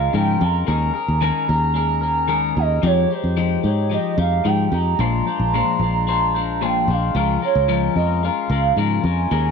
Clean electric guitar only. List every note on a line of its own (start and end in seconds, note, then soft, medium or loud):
0.00 0.13 G#3 medium
0.00 0.13 C#4 medium
0.00 0.14 F4 medium
0.00 0.14 A#4 medium
0.13 0.41 C#3 medium
0.13 0.41 F3 medium
0.13 0.41 G#3 medium
0.13 0.40 C#4 medium
0.13 0.40 F4 medium
0.13 0.39 A#4 medium
0.40 0.66 G#3 medium
0.40 0.67 C#4 medium
0.40 0.67 F4 medium
0.40 0.67 A#4 medium
0.67 0.94 D#3 medium
0.67 0.94 G#3 medium
0.67 0.95 C#4 medium
0.67 0.94 G#4 medium
0.67 0.93 A#4 medium
0.94 1.20 C#4 soft
0.94 1.21 G#4 medium
0.94 1.21 A#4 medium
1.21 1.48 D#3 loud
1.21 1.49 G#3 medium
1.21 1.49 C#4 medium
1.21 1.48 G#4 loud
1.21 1.47 A#4 loud
1.48 1.74 C#4 medium
1.48 1.75 G#4 medium
1.48 1.75 A#4 medium
1.74 2.02 G#3 medium
1.74 2.02 C#4 medium
1.74 2.01 G#4 medium
1.74 2.00 A#4 medium
2.01 2.28 C#4 medium
2.01 2.28 G#4 medium
2.01 2.28 A#4 medium
2.28 2.56 D#3 loud
2.28 2.56 G#3 medium
2.28 2.56 C#4 medium
2.28 2.56 G#4 medium
2.28 2.54 A#4 medium
2.56 2.83 C#4 soft
2.56 2.83 G#4 medium
2.56 2.83 A#4 medium
2.82 3.10 F3 medium
2.82 3.10 G#3 medium
2.82 3.10 D#4 medium
2.82 3.09 G4 medium
3.10 3.36 G#3 soft
3.10 3.36 D#4 soft
3.10 3.37 G4 medium
3.37 3.64 F3 medium
3.37 3.64 G#3 medium
3.37 3.63 D#4 medium
3.37 3.62 G4 medium
3.63 3.90 G#3 soft
3.63 3.90 D#4 medium
3.63 3.91 G4 medium
3.90 4.18 F3 medium
3.90 4.18 G#3 medium
3.90 4.17 D#4 medium
3.90 4.16 G4 medium
4.17 4.44 G#3 soft
4.17 4.44 D#4 soft
4.17 4.45 G4 medium
4.44 4.72 F3 medium
4.44 4.72 G#3 medium
4.44 4.71 D#4 medium
4.44 4.70 G4 medium
4.72 4.99 G#3 soft
4.72 4.99 D#4 medium
4.72 4.99 G4 medium
4.99 5.26 A#2 medium
4.99 5.27 F3 medium
4.99 5.27 G#3 medium
4.99 5.27 D4 medium
4.99 5.26 F4 medium
4.99 5.25 C5 loud
5.27 5.54 G#3 soft
5.27 5.54 D4 medium
5.27 5.53 F4 medium
5.27 5.53 C5 medium
5.54 5.80 A#2 medium
5.54 5.81 F3 loud
5.54 5.81 G#3 loud
5.54 5.81 D4 loud
5.54 5.81 F4 loud
5.54 5.80 C5 loud
5.81 6.06 G#3 medium
5.81 6.07 D4 medium
5.81 6.08 F4 medium
5.81 6.08 C5 medium
6.07 6.34 G#3 medium
6.07 6.35 D4 medium
6.07 6.34 F4 medium
6.07 6.33 C5 medium
6.35 6.61 G#3 medium
6.35 6.61 D4 medium
6.35 6.61 F4 medium
6.35 6.61 C5 medium
6.61 6.88 A#2 medium
6.61 6.88 F3 medium
6.61 6.88 G#3 medium
6.61 6.89 D4 medium
6.61 6.88 F4 medium
6.61 6.87 C5 medium
6.88 7.15 G#3 medium
6.88 7.16 D4 medium
6.88 7.15 F4 medium
6.88 7.15 C5 medium
7.15 7.42 C#3 medium
7.15 7.42 F3 medium
7.15 7.42 G#3 medium
7.15 7.42 C#4 medium
7.15 7.41 F4 medium
7.15 7.41 A#4 medium
7.42 7.68 G#3 soft
7.42 7.68 C#4 soft
7.42 7.68 F4 medium
7.42 7.68 A#4 medium
7.68 7.96 C#3 medium
7.68 7.96 F3 loud
7.68 7.96 G#3 medium
7.68 7.96 C#4 medium
7.68 7.96 F4 medium
7.68 7.95 A#4 medium
7.96 8.22 G#3 soft
7.96 8.23 C#4 medium
7.96 8.23 F4 medium
7.96 8.23 A#4 medium
8.23 8.50 G#3 medium
8.23 8.51 C#4 medium
8.23 8.50 F4 medium
8.23 8.49 A#4 medium
8.50 8.76 G#3 soft
8.50 8.77 C#4 soft
8.50 8.77 F4 medium
8.50 8.77 A#4 medium
8.77 9.04 C#3 medium
8.77 9.04 F3 medium
8.77 9.04 G#3 medium
8.77 9.04 C#4 medium
8.77 9.04 F4 medium
8.77 9.03 A#4 loud
9.05 9.30 G#3 soft
9.05 9.30 C#4 medium
9.05 9.31 F4 medium
9.05 9.31 A#4 medium
9.31 9.51 D#3 medium
9.31 9.51 G#3 medium
9.31 9.51 C#4 medium
9.31 9.51 G#4 medium
9.31 9.51 A#4 medium